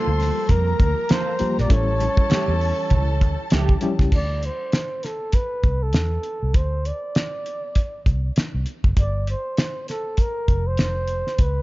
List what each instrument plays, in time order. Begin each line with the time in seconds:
Already playing: string machine F3 G3 A#3 G4, reed electric piano G3 A#3 F4 A4, flugelhorn A4, string section C5 C6
0.07 fingered electric bass D2
0.20 snare, open hi-hat
0.48 fingered electric bass F2, string section A#4 A#5, flugelhorn A#4, kick, closed hi-hat, muted conga, low conga
0.80 fingered electric bass D2, kick, closed hi-hat, muted conga
1.09 clean electric guitar A#3 F4 A4, flugelhorn C5, snare, closed hi-hat, high conga
1.39 reed electric piano G3 A#3 F4 G4, muted fingered electric bass stroke, closed hi-hat, high conga
1.58 fingered electric bass A#1, flugelhorn D5, snare
1.69 fingered electric bass A1, string machine E3 C#4 G4, reed electric piano G3 C#4 E4 A4, string section A4 A5, flugelhorn C#5, kick, closed hi-hat, muted conga
2.00 closed hi-hat, muted conga
2.17 muted fingered electric bass stroke, kick
2.30 clean electric guitar A3 C#4 G4, muted fingered electric bass stroke, snare, closed hi-hat, high conga
2.48 fingered electric bass E2
2.61 open hi-hat
2.90 fingered electric bass C#2, kick, closed hi-hat, muted conga, low conga
3.21 fingered electric bass D2, kick, closed hi-hat, muted conga
3.50 fingered electric bass C#2, clean electric guitar A3 C#4 G4, snare, closed hi-hat, high conga
3.69 kick
3.81 reed electric piano G3 C#4 E4 G4, closed hi-hat, high conga
3.99 fingered electric bass C#2, kick, snare
4.12 fingered electric bass D2, flugelhorn D5, kick, crash
4.43 flugelhorn C5, closed hi-hat
4.72 snare, closed hi-hat
5.03 flugelhorn A4, snare, closed hi-hat
5.32 flugelhorn B4, kick, closed hi-hat
5.63 fingered electric bass C2, kick, closed hi-hat
5.83 flugelhorn A4
5.93 fingered electric bass E2, snare, closed hi-hat
6.23 closed hi-hat
6.43 fingered electric bass C2
6.54 fingered electric bass D2, flugelhorn C5, kick, closed hi-hat
6.85 flugelhorn D5, closed hi-hat
7.15 snare, closed hi-hat
7.46 closed hi-hat
7.75 kick, closed hi-hat
8.06 fingered electric bass C2, kick, closed hi-hat
8.36 muted fingered electric bass stroke, snare, closed hi-hat
8.54 fingered electric bass C2
8.66 closed hi-hat
8.84 fingered electric bass F#1, kick
8.97 fingered electric bass G1, flugelhorn D5, kick, closed hi-hat
9.27 flugelhorn C5, closed hi-hat
9.57 snare, closed hi-hat
9.88 flugelhorn A4, snare, closed hi-hat
10.17 flugelhorn A#4, kick, closed hi-hat
10.48 fingered electric bass F1, kick, closed hi-hat
10.67 flugelhorn C5
10.77 snare, closed hi-hat
11.08 closed hi-hat
11.27 snare
11.38 fingered electric bass C#2, flugelhorn B4, kick, closed hi-hat